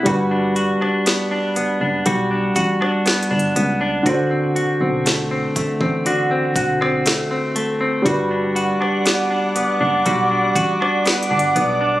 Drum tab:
HH |x-----x-----x-----x-----x-----x-----x-x-x-x-----|x-----x-----x-----x-----x-----x-----x-----x-----|x-----x-----x-----x-----x-----x-----x-x-x-x-----|
SD |---------r--o--------------------r--o-----------|------------o--------------------r--o-----------|---------r--o--------------------r--o-----------|
BD |o-----------------------------o-----------------|o-----------------o--o--------o-----------------|o-----------------------------o-----------------|